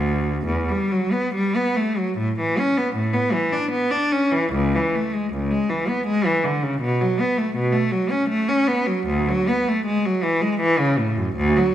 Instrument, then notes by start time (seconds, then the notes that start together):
cello
Already playing: D2
0.46 E2
0.69 G3
0.91 F#3
1.12 B3
1.34 G3
1.56 B3
1.76 A3
1.98 F#3
2.18 A2
2.39 E3
2.59 C#4
2.77 B3
2.95 A2
3.13 B3
3.33 E3
3.53 D4
3.71 B3
3.91 D4
4.12 C#4
4.32 E3
4.53 C#2
4.75 E3
4.95 A3
5.15 G#3
5.33 C#2
5.51 G#3
5.69 E3
5.88 B3
6.07 G#3
6.25 E3
6.44 D3
6.63 C#3
6.81 B2
7.01 F#3
7.20 B3
7.37 A3
7.56 B2
7.72 A3
7.91 F#3
8.11 C#4
8.29 A3
8.49 C#4
8.67 B3
8.87 F#3
9.07 D2
9.28 F#3
9.48 B3
9.69 A3
9.86 G#3
10.06 F#3
10.23 E3
10.42 G#3
10.61 E3
10.79 C#3
10.98 A2
11.17 F#2
11.36 D2
11.56 F#3